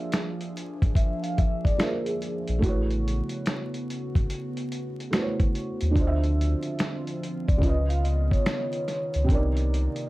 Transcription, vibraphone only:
0.96 1.22 E5 medium
1.23 1.37 F5 medium
1.37 1.63 E5 medium
1.64 1.78 D5 medium
1.79 2.05 A#4 medium
2.06 2.59 G#4 medium
7.48 7.62 D5 medium
7.62 7.88 D#5 medium
7.89 8.03 F5 medium
8.04 8.30 D#5 medium
8.31 9.25 C#5 medium

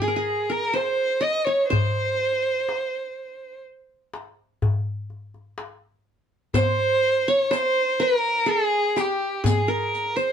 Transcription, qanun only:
0.02 0.16 G#4 medium
0.08 0.49 A#4 medium
0.16 1.38 G#4 medium
0.50 1.63 A#4 medium
0.73 1.53 C5 medium
1.21 2.16 D#5 medium
1.47 1.76 C#5 medium
1.70 3.61 C5 medium
6.54 7.34 C5 medium
7.28 7.57 C#5 medium
7.51 8.56 C5 medium
8.00 9.13 A#4 medium
8.46 9.02 G#4 medium
8.96 9.50 G4 medium
9.44 10.32 G#4 medium
9.68 10.32 A#4 medium
10.16 10.32 C5 medium

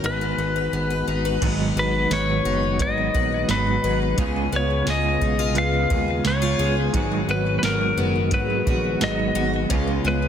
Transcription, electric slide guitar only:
0.06 1.05 B4 medium
1.79 2.14 B4 medium
2.13 2.82 C#5 loud
2.82 3.52 D#5 loud
3.51 3.98 B4 medium
4.56 4.90 C#5 medium
4.90 5.58 D#5 medium
5.58 6.28 F5 loud
6.27 6.74 C#5 medium
7.31 7.58 B4 medium
7.59 7.64 B4 medium
7.65 8.34 A#4 medium
8.34 8.98 B4 medium
9.04 9.50 D#5 loud
10.08 10.28 B4 medium

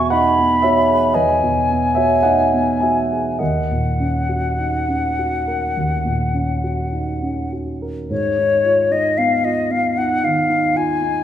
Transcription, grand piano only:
0.00 1.11 E2 soft
0.00 1.43 B2 soft
0.00 0.39 B3 soft
0.00 0.27 F#4 soft
0.00 1.15 B4 medium
0.00 0.62 E5 medium
0.00 0.11 G#5 medium
0.10 0.53 D#4 soft
0.10 0.59 D#5 medium
0.10 0.62 F#5 medium
0.39 0.79 B3 soft
0.62 1.05 F#4 soft
0.62 1.12 C#5 medium
0.62 1.15 E5 medium
0.90 1.31 G#4 soft
1.14 3.36 E2 soft
1.14 1.92 B4 soft
1.14 1.95 D#5 medium
1.43 1.86 B2 soft
1.70 2.13 B3 soft
1.95 2.42 F#4 soft
1.95 2.22 C#5 soft
1.95 2.23 E5 medium
2.23 2.70 D#4 soft
2.23 2.77 D#5 soft
2.23 2.81 F#5 medium
2.54 2.99 B3 soft
2.81 3.29 F#4 soft
2.81 3.36 E5 soft
2.81 3.39 G#5 medium
3.12 3.41 G#4 soft
3.39 5.72 D#2 soft
3.39 5.46 A#4 soft
3.39 7.52 D#5 soft
3.71 4.17 A#2 soft
4.00 4.47 C#4 soft
4.29 4.76 F#4 soft
4.59 5.06 D#4 soft
4.88 5.35 C#4 soft
5.19 5.65 F#4 soft
5.48 5.94 A#4 soft
5.77 8.07 D#2 soft
6.05 6.51 A#2 soft
6.34 6.81 C#4 soft
6.64 7.11 F#4 soft
6.92 7.40 D#4 soft
7.22 7.71 C#4 soft
7.53 7.99 F#4 soft
7.82 8.10 A#4 soft
8.10 10.20 G#2 soft
8.38 8.81 D#4 soft
8.65 9.08 F4 soft
8.91 9.34 D#4 soft
9.18 9.61 B3 soft
9.44 9.87 F4 soft
9.71 10.13 B3 soft
9.98 10.40 D#4 soft
10.24 10.66 D#3 soft
10.50 10.92 D#4 soft
10.76 11.18 F4 soft
11.02 11.24 D#4 soft

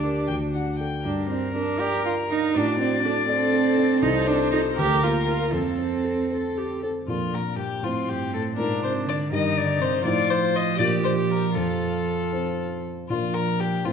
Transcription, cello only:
0.00 0.79 D4 medium
1.05 1.28 D4 medium
1.30 1.55 C4 medium
1.56 1.81 D4 medium
1.80 2.05 G4 medium
2.06 2.14 F4 medium
2.31 2.58 D#4 medium
2.57 2.80 D4 medium
2.80 3.03 C4 medium
3.04 3.28 D4 medium
3.29 4.04 C4 medium
4.02 4.28 D#4 medium
4.27 4.51 D4 medium
4.52 4.60 D#4 medium
4.78 5.05 G4 medium
5.03 5.27 F4 medium
5.27 5.54 F4 medium
5.53 6.83 C4 medium
7.06 7.31 F2 soft
7.32 7.40 A#2 soft
7.56 7.64 G2 soft
7.84 7.92 F2 soft
8.09 8.35 G2 soft
8.34 8.60 A2 medium
8.58 8.85 A#2 medium
8.84 9.08 C3 medium
9.06 9.33 D3 medium
9.32 9.56 D#3 medium
9.55 9.81 D3 medium
9.79 10.04 C3 medium
10.05 12.86 F3 medium
13.11 13.82 F3 soft
13.86 13.93 F3 medium

